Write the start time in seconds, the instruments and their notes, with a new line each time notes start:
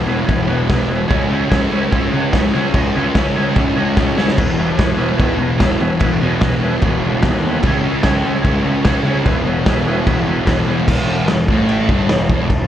Already playing: picked electric bass E1
0.07 distorted electric guitar E2 B2 E3, transistor combo organ G#4 B4 E5
0.25 picked electric bass E1, distorted electric guitar E2, transistor combo organ G#4 B4 C#5, kick, crash
0.30 distorted electric guitar B2 E3
0.47 picked electric bass E1, distorted electric guitar E2 B2 E3, transistor combo organ G#4 B4 F#5
0.67 picked electric bass E1, distorted electric guitar E2 B2 E3, transistor combo organ G#4 B4 E5, kick, snare, crash
0.89 distorted electric guitar E2 B2 E3, transistor combo organ G#4 B4 E5
1.08 picked electric bass C#2, distorted electric guitar C#3 G#3 C#4, transistor combo organ G#4 C#5 E5, kick, crash
1.29 distorted electric guitar C#3 G#3 C#4, transistor combo organ G#4 C#5 E5
1.49 picked electric bass C#2, distorted electric guitar C#3 G#3 C#4, transistor combo organ G#4 C#5 E5, kick, snare, crash
1.70 distorted electric guitar C#3 G#3 C#4, transistor combo organ G#4 C#5 E5
1.91 picked electric bass C#2, distorted electric guitar C#3 G#3 C#4, transistor combo organ G#4 C#5 E5, kick, crash
2.12 picked electric bass C#2, distorted electric guitar C#3 G#3 C#4, transistor combo organ G#4 C#5 F#5
2.32 picked electric bass C#2, distorted electric guitar C#3 G#3 C#4, transistor combo organ G#4 C#5, kick, snare, crash
2.37 transistor combo organ E5
2.53 picked electric bass C#2, distorted electric guitar C#3 G#3 C#4, transistor combo organ G#4 C#5 E5
2.74 picked electric bass C#2, distorted electric guitar C#3 G#3 C#4, transistor combo organ G#4 C#5 D#5, kick, crash
2.94 picked electric bass C#2, distorted electric guitar C#3 G#3 C#4, transistor combo organ G#4 C#5 E5
3.15 picked electric bass C#2, distorted electric guitar C#3 G#3 C#4, transistor combo organ G#4 C#5 E5, kick, snare, crash
3.36 distorted electric guitar C#3 G#3 C#4, transistor combo organ G#4 C#5 E5
3.55 picked electric bass C#2, distorted electric guitar C#3 G#3, transistor combo organ G#4 C#5 E5, kick, crash
3.60 distorted electric guitar C#4
3.75 picked electric bass C#2, distorted electric guitar C#3 G#3 C#4, transistor combo organ G#4 C#5 D#5
3.97 picked electric bass C#2, distorted electric guitar C#3 G#3 C#4, transistor combo organ G#4 C#5 E5, kick, snare
4.16 distorted electric guitar C#3 G#3 C#4, transistor combo organ G#4 C#5 E5, snare
4.28 snare
4.37 picked electric bass E1, distorted electric guitar E2 B2 E3, transistor combo organ G#4 B4 E5, kick, crash
4.57 distorted electric guitar E2 B2 E3, transistor combo organ G#4 B4 E5
4.78 picked electric bass E1, distorted electric guitar E2 B2 E3, transistor combo organ G#4 B4 F#5, kick, snare, crash
4.96 distorted electric guitar E2 B2 E3, transistor combo organ G#4 B4 E5
5.17 picked electric bass E1, distorted electric guitar E2 B2, transistor combo organ G#4 B4 E5, kick, crash
5.21 distorted electric guitar E3
5.38 picked electric bass E1, distorted electric guitar E2 B2 E3, transistor combo organ G#4 B4 D#5
5.58 picked electric bass E1, distorted electric guitar E2 B2 E3, transistor combo organ G#4 B4 E5, kick, snare, crash
5.80 picked electric bass E1, distorted electric guitar E2 B2 E3, transistor combo organ G#4 B4 E5
6.00 picked electric bass E1, distorted electric guitar E2 B2 E3, transistor combo organ G#4 B4 E5, kick, crash
6.21 picked electric bass E1, distorted electric guitar E2 B2 E3, transistor combo organ G#4 B4 D#5
6.41 picked electric bass E1, distorted electric guitar E2 B2 E3, transistor combo organ G#4 B4 D#5, kick, snare, crash
6.61 distorted electric guitar E2 B2 E3, transistor combo organ G#4 B4 E5
6.82 picked electric bass E1, distorted electric guitar E2 B2 E3, transistor combo organ G#4, kick, crash
6.86 transistor combo organ B4 F#5
7.03 picked electric bass E1, distorted electric guitar E2 B2 E3, transistor combo organ G#4
7.08 transistor combo organ B4 C#5
7.22 picked electric bass D#2, distorted electric guitar E2 B2 E3, kick, snare, crash
7.27 transistor combo organ G#4 B4 E5
7.43 distorted electric guitar E2 B2 E3
7.48 transistor combo organ G#4 B4 E5
7.62 picked electric bass C#2, distorted electric guitar C#3 G#3 C#4, kick, crash
7.67 transistor combo organ G#4 C#5 E5
7.82 distorted electric guitar C#3 G#3 C#4, transistor combo organ G#4 C#5
7.86 transistor combo organ E5
8.02 picked electric bass C#2, distorted electric guitar C#3 G#3 C#4, transistor combo organ G#4 C#5 E5, kick, snare, crash
8.24 distorted electric guitar C#3 G#3 C#4, transistor combo organ G#4 C#5 E5
8.42 picked electric bass C#2, distorted electric guitar C#3 G#3, transistor combo organ G#4 C#5 E5, kick, crash
8.46 distorted electric guitar C#4
8.62 picked electric bass C#2, distorted electric guitar C#3 G#3 C#4, transistor combo organ G#4 C#5 E5
8.83 picked electric bass C#2, distorted electric guitar C#3 G#3 C#4, transistor combo organ G#4 C#5 E5, kick, snare, crash
9.04 picked electric bass C#2, distorted electric guitar C#3 G#3 C#4, transistor combo organ G#4 C#5
9.08 transistor combo organ E5
9.23 picked electric bass E1, distorted electric guitar E2 B2 E3, transistor combo organ G#4 B4 E5, kick, crash
9.44 picked electric bass E1, distorted electric guitar E2 B2 E3, transistor combo organ G#4 B4
9.48 transistor combo organ E5
9.66 picked electric bass E1, distorted electric guitar E2 B2 E3, transistor combo organ G#4 B4 E5, kick, snare, crash
9.85 distorted electric guitar E2 B2 E3, transistor combo organ G#4 B4 E5
10.06 picked electric bass E1, distorted electric guitar E2 B2 E3, transistor combo organ G#4 B4 E5, kick, crash
10.26 picked electric bass E1, distorted electric guitar E2 B2 E3, transistor combo organ G#4 B4 E5
10.46 picked electric bass E1, distorted electric guitar E2 B2 E3, transistor combo organ G#4 B4 E5, kick, snare, crash
10.66 distorted electric guitar E2 B2 E3, transistor combo organ G#4 B4 F#5
10.88 picked electric bass E1, distorted electric guitar E2, kick, crash
11.28 picked electric bass E1, distorted electric guitar E2, snare, crash
11.48 picked electric bass A1, distorted electric guitar A2, kick
11.69 crash
11.89 picked electric bass G1, distorted electric guitar G2, kick
12.09 picked electric bass E1, distorted electric guitar E2, snare, crash
12.29 picked electric bass E1, distorted electric guitar E2, kick
12.50 picked electric bass E1, distorted electric guitar E2, kick, crash